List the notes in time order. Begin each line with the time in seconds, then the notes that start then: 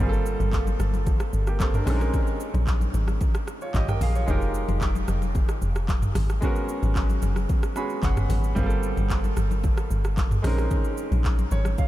Already playing: G3
0.00 G1 A#3 C4 F4 G#4, low conga
0.09 A4, shaker
0.26 shaker
0.40 G1, high conga, shaker
0.53 kick, clap, shaker
0.67 high conga, shaker
0.80 G1, cross-stick, high conga, shaker
0.94 high conga, shaker
1.06 kick, low conga, shaker
1.20 cross-stick, shaker
1.33 G1, shaker
1.47 A#3 G4, cross-stick, shaker
1.60 C4 A4, kick, clap, high conga, shaker
1.74 D4 A#4, mid tom, shaker
1.85 A#1 G#3 C4 C#4 D#4, cross-stick, open hi-hat, high conga, low conga, shaker
1.90 A4
1.97 A#4
2.01 cross-stick, shaker
2.14 kick, low conga, shaker
2.27 shaker
2.40 shaker
2.54 A#1, high conga, shaker
2.67 kick, clap, shaker
2.81 high conga, shaker
2.94 G#1, high conga, shaker
3.08 cross-stick, high conga, shaker
3.21 kick, low conga, shaker
3.35 cross-stick, shaker
3.47 cross-stick, shaker
3.61 F4 C#5, shaker
3.74 G#1 G4 D#5, kick, clap, high conga, shaker
3.88 A#4 G5, cross-stick, mid tom, shaker
4.01 A#1 G#4 F5, open hi-hat, high conga, low conga, shaker
4.15 F4 C#5, shaker
4.26 F1 G#3 D#4 F4 G4, kick, low conga, shaker
4.31 A#4
4.41 shaker
4.54 shaker
4.68 F1, high conga, shaker
4.81 kick, clap, shaker
4.95 high conga, shaker
5.08 F1, cross-stick, high conga, shaker
5.22 high conga, shaker
5.35 kick, low conga, shaker
5.49 cross-stick, shaker
5.62 F1, shaker
5.75 cross-stick, shaker
5.88 kick, clap, high conga, shaker
6.02 mid tom, shaker
6.15 G#1, cross-stick, open hi-hat, high conga, low conga, shaker
6.29 cross-stick, shaker
6.41 G#3 B3 C#4 F#4, kick, low conga, shaker
6.45 A#4
6.56 shaker
6.69 shaker
6.83 G#1, high conga, shaker
6.96 kick, clap, shaker
7.10 high conga, shaker
7.22 F#1, high conga, shaker
7.36 cross-stick, high conga, shaker
7.49 kick, low conga, shaker
7.63 cross-stick, shaker
7.76 G#3 B3 C#4 F#4 G#4 B5, cross-stick, shaker
7.90 shaker
8.03 F#1 F#5, kick, clap, high conga, low conga, shaker
8.17 cross-stick, mid tom, shaker
8.29 G#1, open hi-hat, high conga, low conga, shaker
8.44 shaker
8.55 G1 G3 A#3 C4 F4, kick, low conga, shaker
8.60 G#4
8.66 A4
8.70 shaker
8.83 shaker
8.97 G1, high conga, shaker
9.10 kick, clap, shaker
9.24 high conga, shaker
9.37 G1, cross-stick, high conga, shaker
9.51 high conga, shaker
9.64 kick, low conga, shaker
9.77 cross-stick, shaker
9.91 G1, shaker
10.04 cross-stick, shaker
10.17 kick, clap, high conga, shaker
10.31 mid tom, shaker
10.42 A#1 G#3 C4 C#4 D#4, cross-stick, open hi-hat, high conga, low conga, shaker
10.47 A#4
10.58 cross-stick, shaker
10.71 kick, low conga, shaker
10.84 shaker
10.97 shaker
11.12 A#1, high conga, shaker
11.24 kick, clap, shaker
11.39 high conga, shaker
11.51 G#1 C#5, high conga, shaker
11.65 cross-stick, high conga, shaker
11.78 F5, kick, low conga, shaker